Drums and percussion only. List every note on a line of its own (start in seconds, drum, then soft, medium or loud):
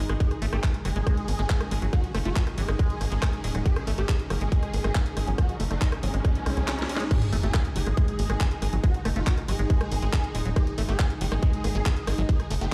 0.09 cross-stick medium
0.09 closed hi-hat medium
0.20 kick loud
0.20 closed hi-hat medium
0.31 cross-stick soft
0.31 closed hi-hat soft
0.42 open hi-hat loud
0.53 cross-stick medium
0.53 closed hi-hat soft
0.63 kick loud
0.63 clap loud
0.63 closed hi-hat medium
0.74 closed hi-hat medium
0.85 cross-stick soft
0.85 open hi-hat loud
0.96 closed hi-hat medium
1.07 kick loud
1.07 cross-stick medium
1.07 closed hi-hat medium
1.17 closed hi-hat medium
1.28 open hi-hat loud
1.39 cross-stick soft
1.39 closed hi-hat medium
1.50 kick loud
1.50 clap loud
1.50 closed hi-hat medium
1.61 cross-stick medium
1.61 closed hi-hat medium
1.71 open hi-hat loud
1.82 closed hi-hat medium
1.93 kick loud
1.93 cross-stick soft
1.93 closed hi-hat medium
2.04 closed hi-hat medium
2.15 cross-stick medium
2.15 open hi-hat loud
2.25 closed hi-hat medium
2.36 kick loud
2.36 clap loud
2.36 closed hi-hat medium
2.47 cross-stick soft
2.47 closed hi-hat medium
2.58 open hi-hat loud
2.69 cross-stick medium
2.69 closed hi-hat medium
2.79 kick loud
2.79 closed hi-hat medium
2.90 closed hi-hat medium
3.01 cross-stick soft
3.01 open hi-hat loud
3.12 closed hi-hat medium
3.22 kick loud
3.22 cross-stick medium
3.22 clap loud
3.22 closed hi-hat medium
3.33 closed hi-hat medium
3.44 open hi-hat loud
3.55 cross-stick soft
3.55 closed hi-hat medium
3.66 kick loud
3.66 closed hi-hat medium
3.76 cross-stick medium
3.76 closed hi-hat medium
3.87 open hi-hat loud
3.98 closed hi-hat medium
4.09 kick loud
4.09 cross-stick soft
4.09 clap loud
4.09 closed hi-hat medium
4.20 closed hi-hat medium
4.30 cross-stick medium
4.30 open hi-hat loud
4.41 closed hi-hat medium
4.52 kick loud
4.52 closed hi-hat medium
4.63 cross-stick soft
4.63 closed hi-hat medium
4.74 open hi-hat loud
4.84 cross-stick medium
4.84 closed hi-hat medium
4.95 kick loud
4.95 clap loud
4.95 closed hi-hat medium
5.06 closed hi-hat medium
5.17 cross-stick soft
5.17 open hi-hat loud
5.27 closed hi-hat medium
5.38 kick loud
5.38 cross-stick medium
5.38 closed hi-hat medium
5.49 closed hi-hat medium
5.60 open hi-hat loud
5.71 cross-stick soft
5.71 closed hi-hat medium
5.81 kick loud
5.81 clap loud
5.81 closed hi-hat medium
5.92 cross-stick medium
5.92 closed hi-hat medium
6.03 open hi-hat loud
6.14 closed hi-hat medium
6.25 kick loud
6.25 cross-stick soft
6.25 closed hi-hat medium
6.35 closed hi-hat medium
6.46 cross-stick medium
6.46 open hi-hat loud
6.57 closed hi-hat medium
6.68 snare medium
6.68 clap loud
6.68 closed hi-hat medium
6.79 snare medium
6.79 closed hi-hat medium
6.89 open hi-hat loud
6.97 snare loud
6.97 closed hi-hat medium
7.11 kick loud
7.11 cross-stick soft
7.11 closed hi-hat medium
7.11 crash loud
7.22 closed hi-hat medium
7.33 open hi-hat loud
7.43 closed hi-hat medium
7.54 kick loud
7.54 cross-stick medium
7.54 clap loud
7.54 closed hi-hat medium
7.65 closed hi-hat medium
7.76 open hi-hat loud
7.87 cross-stick soft
7.87 closed hi-hat medium
7.97 kick loud
7.97 closed hi-hat medium
8.08 closed hi-hat medium
8.19 open hi-hat loud
8.30 cross-stick medium
8.30 closed hi-hat medium
8.40 kick loud
8.40 clap loud
8.40 closed hi-hat medium
8.51 closed hi-hat medium
8.62 cross-stick soft
8.62 open hi-hat loud
8.73 closed hi-hat medium
8.84 kick loud
8.84 closed hi-hat medium
8.94 closed hi-hat medium
9.05 cross-stick medium
9.05 open hi-hat loud
9.16 closed hi-hat medium
9.27 kick loud
9.27 clap loud
9.27 closed hi-hat medium
9.38 cross-stick soft
9.38 closed hi-hat medium
9.48 open hi-hat loud
9.59 closed hi-hat medium
9.70 kick loud
9.70 closed hi-hat medium
9.81 cross-stick medium
9.81 closed hi-hat medium
9.92 open hi-hat loud
10.02 closed hi-hat medium
10.13 kick loud
10.13 cross-stick soft
10.13 clap loud
10.13 closed hi-hat medium
10.24 closed hi-hat medium
10.35 open hi-hat loud
10.46 closed hi-hat medium
10.56 kick loud
10.56 cross-stick medium
10.56 closed hi-hat medium
10.67 closed hi-hat medium
10.78 open hi-hat loud
10.89 cross-stick soft
10.89 closed hi-hat medium
10.99 kick loud
10.99 clap loud
10.99 closed hi-hat medium
11.10 closed hi-hat medium
11.21 open hi-hat loud
11.32 cross-stick medium
11.32 closed hi-hat medium
11.43 kick loud
11.43 closed hi-hat medium
11.53 closed hi-hat medium
11.64 cross-stick soft
11.64 open hi-hat loud
11.75 closed hi-hat medium
11.86 kick loud
11.86 clap loud
11.86 closed hi-hat medium
11.97 closed hi-hat medium
12.07 cross-stick medium
12.07 open hi-hat loud
12.18 closed hi-hat medium
12.29 kick loud
12.29 closed hi-hat medium
12.40 cross-stick soft
12.40 closed hi-hat medium
12.51 open hi-hat loud
12.61 closed hi-hat medium